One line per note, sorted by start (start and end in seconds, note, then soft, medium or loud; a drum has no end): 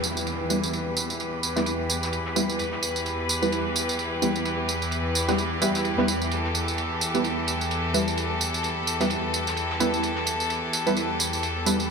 0.00 11.90 E2 medium
0.00 11.90 E3 medium
0.00 11.90 G4 medium
0.00 6.27 B4 medium
0.00 ride medium
0.00 tambourine medium
0.00 downlifter medium
0.17 tambourine soft
0.26 ride medium
0.26 tambourine soft
0.50 0.61 G3 medium
0.50 0.61 B3 medium
0.50 0.61 E4 medium
0.50 0.61 B4 medium
0.50 ride medium
0.50 tambourine medium
0.63 tambourine soft
0.73 ride medium
0.73 tambourine soft
0.97 ride medium
0.97 tambourine medium
1.10 ride soft
1.10 tambourine soft
1.20 ride medium
1.20 tambourine soft
1.43 ride medium
1.43 tambourine medium
1.56 1.61 G3 medium
1.56 1.61 B3 medium
1.56 1.61 E4 medium
1.56 1.61 B4 medium
1.56 snare soft
1.56 tambourine soft
1.66 ride medium
1.66 tambourine soft
1.89 ride medium
1.89 tambourine medium
2.03 snare soft
2.03 tambourine soft
2.12 ride medium
2.12 tambourine soft
2.26 snare soft
2.36 2.47 G3 medium
2.36 2.47 B3 medium
2.36 2.47 E4 medium
2.36 2.47 B4 medium
2.36 ride medium
2.36 tambourine medium
2.50 tambourine soft
2.59 ride medium
2.59 tambourine soft
2.72 snare soft
2.82 ride medium
2.82 tambourine medium
2.96 tambourine soft
3.06 ride medium
3.06 tambourine soft
3.29 ride medium
3.29 tambourine medium
3.42 3.50 G3 medium
3.42 3.50 B3 medium
3.42 3.50 E4 medium
3.42 3.50 B4 medium
3.42 tambourine soft
3.52 ride medium
3.52 tambourine soft
3.75 ride medium
3.75 tambourine medium
3.89 tambourine soft
3.99 ride medium
3.99 tambourine soft
4.22 4.33 G3 medium
4.22 4.33 B3 medium
4.22 4.33 E4 medium
4.22 4.33 B4 medium
4.22 ride medium
4.22 tambourine medium
4.36 tambourine soft
4.45 ride medium
4.45 tambourine soft
4.68 ride medium
4.68 tambourine medium
4.82 ride soft
4.82 tambourine soft
4.91 ride medium
4.91 tambourine soft
5.15 ride medium
5.15 tambourine medium
5.28 5.33 G3 medium
5.28 5.33 B3 medium
5.28 5.33 E4 medium
5.28 5.33 B4 medium
5.28 snare medium
5.28 tambourine soft
5.38 ride medium
5.38 tambourine soft
5.61 5.95 G3 medium
5.61 5.95 B3 medium
5.61 5.95 E4 medium
5.61 5.95 B4 loud
5.61 ride medium
5.61 tambourine medium
5.75 snare soft
5.75 tambourine soft
5.84 ride medium
5.84 tambourine soft
5.98 6.03 G3 medium
5.98 6.03 B3 medium
5.98 6.03 E4 medium
5.98 6.03 B4 medium
5.98 snare soft
6.08 ride medium
6.08 tambourine medium
6.22 tambourine soft
6.31 11.90 A4 medium
6.31 ride medium
6.31 tambourine soft
6.45 snare soft
6.54 ride medium
6.54 tambourine medium
6.68 tambourine soft
6.78 ride medium
6.78 tambourine soft
7.01 ride medium
7.01 tambourine medium
7.14 7.22 G3 medium
7.14 7.22 B3 medium
7.14 7.22 E4 medium
7.14 7.22 B4 medium
7.14 tambourine soft
7.24 ride medium
7.24 tambourine soft
7.47 ride medium
7.47 tambourine medium
7.61 tambourine soft
7.71 ride medium
7.71 tambourine soft
7.94 8.05 G3 medium
7.94 8.05 B3 medium
7.94 8.05 E4 medium
7.94 8.05 B4 medium
7.94 ride medium
7.94 tambourine medium
8.08 tambourine soft
8.17 ride medium
8.17 tambourine soft
8.41 ride medium
8.41 tambourine medium
8.54 ride soft
8.54 tambourine soft
8.63 ride medium
8.63 tambourine soft
8.87 ride medium
8.87 tambourine medium
9.00 9.05 G3 medium
9.00 9.05 B3 medium
9.00 9.05 E4 medium
9.00 9.05 B4 medium
9.00 snare medium
9.00 tambourine soft
9.10 ride medium
9.10 tambourine soft
9.33 ride medium
9.33 tambourine medium
9.47 snare soft
9.47 tambourine soft
9.56 ride medium
9.56 tambourine soft
9.70 snare soft
9.80 9.91 G3 medium
9.80 9.91 B3 medium
9.80 9.91 E4 medium
9.80 9.91 B4 loud
9.80 ride medium
9.80 tambourine medium
9.94 tambourine soft
10.03 ride medium
10.03 tambourine soft
10.16 snare soft
10.26 ride medium
10.26 tambourine medium
10.40 tambourine soft
10.50 ride medium
10.50 tambourine soft
10.73 ride medium
10.73 tambourine medium
10.86 10.94 G3 medium
10.86 10.94 B3 medium
10.86 10.94 E4 medium
10.86 10.94 B4 medium
10.86 tambourine soft
10.97 ride medium
10.97 tambourine soft
11.19 ride medium
11.19 tambourine medium
11.33 tambourine soft
11.43 ride medium
11.43 tambourine soft
11.66 11.77 G3 medium
11.66 11.77 B3 medium
11.66 11.77 E4 medium
11.66 11.77 B4 medium
11.66 ride medium
11.66 tambourine medium
11.80 tambourine soft